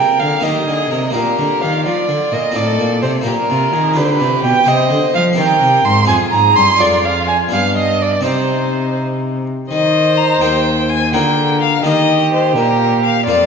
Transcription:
0.00 0.18 C3 soft
0.00 0.39 A#3 soft
0.00 0.40 F4 soft
0.00 0.41 G#4 soft
0.00 0.42 A#4 medium
0.00 0.21 G5 medium
0.19 0.41 D3 soft
0.19 0.43 D3 soft
0.19 0.45 F5 medium
0.40 0.66 D#3 soft
0.40 0.65 A#3 soft
0.40 1.11 D#4 soft
0.40 1.12 G4 soft
0.40 0.66 G4 soft
0.40 1.14 D#5 medium
0.44 0.65 D#3 soft
0.67 0.90 D3 soft
0.67 0.89 D3 soft
0.67 0.92 G#4 soft
0.91 1.16 C3 soft
0.91 1.13 C3 soft
0.91 1.14 A#4 soft
1.10 2.50 A#3 soft
1.10 2.50 D4 soft
1.10 2.51 F4 soft
1.14 1.38 A#2 soft
1.14 1.36 A#2 soft
1.14 1.87 G4 medium
1.14 1.63 A#4 medium
1.39 1.60 D3 soft
1.39 1.47 D3 soft
1.61 1.87 D#3 medium
1.61 1.84 D#3 soft
1.61 1.85 F5 medium
1.85 2.08 F3 soft
1.85 2.07 F3 soft
1.85 2.55 F4 soft
1.85 2.34 D5 medium
2.09 2.17 D3 soft
2.09 2.30 D3 soft
2.32 2.40 A#2 soft
2.32 2.53 A#2 soft
2.32 2.57 D#5 medium
2.52 2.80 A2 medium
2.52 3.22 C4 soft
2.52 3.22 D#4 soft
2.52 3.23 F4 soft
2.52 3.24 A4 medium
2.52 3.02 D5 medium
2.56 2.77 A2 soft
2.78 3.04 A#2 medium
2.78 3.00 A#2 soft
3.02 3.25 C3 medium
3.02 3.24 C3 soft
3.02 3.10 C5 medium
3.21 3.92 A#3 soft
3.21 3.93 D4 soft
3.21 3.93 F4 soft
3.25 3.47 A#2 soft
3.25 3.34 A#2 soft
3.25 3.33 G4 medium
3.25 3.98 A#4 medium
3.49 3.72 C3 soft
3.49 3.71 C3 soft
3.49 3.74 F4 medium
3.73 3.98 D#3 medium
3.73 3.95 D#3 soft
3.73 3.98 G#4 medium
3.94 4.18 D3 soft
3.94 4.23 D3 medium
3.94 4.63 F4 soft
3.94 4.63 G4 soft
3.94 4.68 G4 medium
3.94 4.06 B4 medium
4.04 4.13 C5 medium
4.11 4.44 B4 medium
4.20 4.41 C3 soft
4.20 4.43 C3 medium
4.44 4.52 B2 medium
4.44 4.65 B2 soft
4.44 4.69 G5 medium
4.64 4.90 C3 medium
4.64 4.88 C3 soft
4.64 5.33 G4 soft
4.64 5.35 C5 soft
4.64 5.37 C5 medium
4.68 5.15 D#5 medium
4.90 4.98 D3 medium
4.90 5.12 D3 soft
5.14 5.35 F3 soft
5.14 5.40 F3 medium
5.14 5.23 F5 medium
5.33 6.04 C4 soft
5.33 6.05 G4 soft
5.33 6.06 C5 soft
5.37 5.59 D#3 soft
5.37 5.61 D#3 medium
5.37 6.07 A#4 medium
5.37 5.86 G5 medium
5.61 5.84 C3 medium
5.61 5.83 C3 soft
5.85 6.08 G#2 medium
5.85 6.06 G#2 soft
5.85 6.07 C6 medium
6.05 6.53 C4 soft
6.05 6.76 F4 soft
6.05 6.81 G#4 medium
6.05 6.77 C5 soft
6.05 6.16 G#5 medium
6.09 6.17 F2 medium
6.09 6.30 F2 soft
6.32 6.56 G#2 medium
6.32 6.54 G#2 soft
6.32 6.57 A#5 medium
6.55 6.64 G2 medium
6.55 6.78 G2 soft
6.55 6.82 C6 medium
6.76 7.48 D4 soft
6.76 7.49 F4 soft
6.76 7.53 F4 medium
6.76 7.49 G#4 soft
6.76 7.06 D5 medium
6.80 7.48 F2 medium
6.80 7.48 F2 soft
7.05 7.27 F5 medium
7.28 7.36 G#5 medium
7.49 8.23 G2 soft
7.49 8.20 B3 soft
7.49 8.21 D4 soft
7.49 8.26 D4 medium
7.49 8.22 G4 soft
7.49 7.75 F5 medium
7.54 8.21 G2 soft
7.77 8.03 D#5 medium
8.01 8.25 D5 medium
8.21 9.48 C3 soft
8.21 9.65 C4 soft
8.21 9.65 D#4 soft
8.21 9.34 D#4 medium
8.21 9.66 G4 soft
8.25 9.47 C3 soft
8.25 8.97 C5 medium
9.70 10.38 D#3 medium
9.70 10.38 D#3 soft
9.70 11.16 C5 medium
9.70 10.19 D#5 medium
10.17 10.43 A#5 medium
10.41 11.09 D#2 soft
10.41 11.15 D#2 medium
10.41 10.93 A#3 soft
10.41 10.93 D#4 soft
10.41 10.94 G4 soft
10.41 10.91 G5 medium
10.89 11.13 G#5 medium
11.13 11.81 D3 medium
11.13 11.84 D3 medium
11.13 11.81 A#3 soft
11.13 11.81 F4 soft
11.13 11.81 G#4 soft
11.13 11.84 A#4 medium
11.13 11.60 G5 medium
11.61 11.84 F5 medium
11.84 12.57 D#3 medium
11.84 12.52 D#3 soft
11.84 12.52 A#3 soft
11.84 12.52 D#4 soft
11.84 13.25 G4 medium
11.84 12.53 G4 soft
11.84 12.32 D#5 medium
12.33 12.56 C5 medium
12.56 13.23 A#2 medium
12.56 13.29 A#2 medium
12.56 13.03 A#4 medium
13.03 13.25 F5 medium
13.26 13.46 F2 medium
13.26 13.46 A#3 soft
13.26 13.46 D4 soft
13.26 13.46 F4 medium
13.26 13.46 F4 soft
13.26 13.46 D5 medium

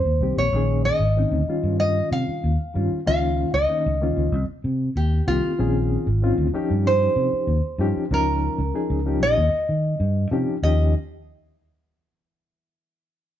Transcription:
0.00 0.38 C5 medium
0.05 0.19 D#2 medium
0.21 0.35 C2 medium
0.21 0.45 D#3 medium
0.21 0.45 A#3 medium
0.21 0.46 C4 medium
0.21 0.46 G4 medium
0.37 0.51 A#1 medium
0.37 0.82 C#5 medium
0.53 0.89 A#1 medium
0.53 1.01 D#3 medium
0.53 1.01 A#3 medium
0.53 1.01 C#4 medium
0.53 1.02 G#4 medium
0.85 1.76 D#5 medium
0.99 1.24 G#1 medium
1.17 1.40 D#3 medium
1.17 1.41 C4 medium
1.17 1.41 C#4 medium
1.17 1.41 D#4 medium
1.32 1.44 D2 medium
1.47 2.49 D#3 medium
1.47 2.50 G3 medium
1.47 2.50 C#4 medium
1.47 2.50 F4 medium
1.47 muted fingered electric bass stroke soft
1.63 2.00 G2 medium
1.80 2.12 D#5 medium
2.11 2.23 C3 medium
2.11 3.06 F5 medium
2.28 muted fingered electric bass stroke soft
2.44 2.56 D#2 medium
2.74 2.87 G2 medium
2.74 2.98 D#3 medium
2.74 2.98 G3 medium
2.74 2.99 C#4 medium
2.74 2.99 F4 medium
2.92 muted fingered electric bass stroke soft
3.06 3.43 C#2 medium
3.06 3.53 D#3 medium
3.06 3.54 A#3 medium
3.06 3.54 C#4 medium
3.06 3.54 F4 medium
3.06 3.51 F5 medium
3.54 3.66 C#2 medium
3.54 4.45 D#5 medium
3.69 3.93 D#3 medium
3.69 3.93 A#3 medium
3.69 3.93 C#4 medium
3.69 3.93 D#4 medium
3.86 4.10 C#2 medium
4.02 4.33 D#3 medium
4.02 4.33 A#3 medium
4.02 4.33 C#4 medium
4.02 4.34 F4 medium
4.17 4.29 C#2 medium
4.32 4.44 C2 loud
4.48 muted fingered electric bass stroke soft
4.64 4.88 C3 medium
4.96 5.20 D#2 medium
4.96 5.27 G4 medium
5.26 5.40 C2 medium
5.26 5.51 D#3 medium
5.26 5.51 A#3 medium
5.26 5.51 C4 medium
5.26 6.90 F4 medium
5.26 5.51 G4 medium
5.59 5.96 A#1 medium
5.59 6.06 D#3 medium
5.59 6.06 C4 medium
5.59 6.07 C#4 medium
5.59 6.07 G#4 medium
6.07 6.31 G#1 medium
6.22 6.46 D#3 medium
6.22 6.46 C4 medium
6.22 6.46 C#4 medium
6.22 6.47 F4 medium
6.38 6.50 D2 medium
6.54 7.55 F3 medium
6.54 7.55 C#4 medium
6.54 7.55 D#4 medium
6.54 7.56 G4 loud
6.54 muted fingered electric bass stroke soft
6.70 7.06 G2 medium
6.87 8.13 C5 medium
7.16 7.29 C3 medium
7.33 muted fingered electric bass stroke soft
7.47 7.60 D#2 medium
7.78 7.91 G2 medium
7.78 8.03 F3 medium
7.78 8.04 C#4 medium
7.78 8.04 D#4 medium
7.78 8.04 G4 medium
7.96 muted fingered electric bass stroke soft
8.11 8.48 C#2 medium
8.11 8.59 F3 medium
8.11 8.59 C#4 medium
8.11 8.59 D#4 medium
8.11 8.60 A#4 medium
8.11 9.22 A#4 medium
8.58 8.71 C#2 medium
8.74 8.98 F3 medium
8.74 8.98 C#4 medium
8.74 8.99 D#4 medium
8.74 8.99 G#4 medium
8.90 9.22 C#2 medium
9.06 9.38 F3 medium
9.06 9.38 C#4 medium
9.06 9.38 D#4 medium
9.06 9.39 G4 medium
9.22 9.34 A#1 medium
9.22 10.29 D#5 loud
9.38 9.50 D#2 medium
9.53 muted fingered electric bass stroke soft
9.69 9.93 D#3 medium
10.00 10.25 G2 medium
10.31 10.44 C3 medium
10.31 10.56 F3 medium
10.31 10.56 C#4 medium
10.31 10.56 D#4 medium
10.31 10.57 G4 medium
10.63 10.93 D#2 medium
10.63 10.94 F3 medium
10.63 10.94 C#4 medium
10.63 10.94 D#4 medium
10.63 10.94 G4 medium
10.63 10.93 D#5 medium

